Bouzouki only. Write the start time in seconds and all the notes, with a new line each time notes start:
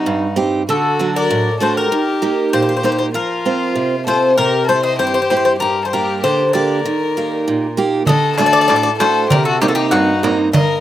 Already playing: F#4
0.70 A4
1.16 D5
1.62 C5
1.77 A#4
2.53 C5
2.62 C5
2.69 C5
2.77 C5
2.85 C5
2.92 C5
2.99 C5
3.15 A#4
4.08 C5
4.38 A#4
4.69 C5
4.83 D#5
4.99 C5
5.07 C5
5.14 C5
5.22 C5
5.30 C5
5.37 C5
5.45 C5
5.60 A#4
5.85 C5
5.93 A#4
6.24 C5
6.53 D5
8.07 D#5
8.38 D5
8.46 D5
8.53 D5
8.61 D5
8.68 D5
8.76 D5
8.83 D5
9.00 C5
9.30 A#4
9.45 A4
9.61 G4
9.68 A4
9.75 G4
9.91 F#4
10.53 D#5